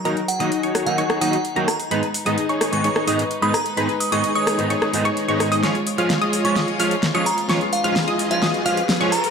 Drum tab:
HH |xxoxxxoxxxoxxxoo|xxoxxxoxxxoxxxox|xxoxxxoxxxoxxxoo|xxoxxxoxxxoxxxox|
SD |------r--r----r-|------r--r----r-|------r--r----r-|o---o---o---o---|

HH |xxoxxxoxxxoxxxoo|
SD |o---o---o---o---|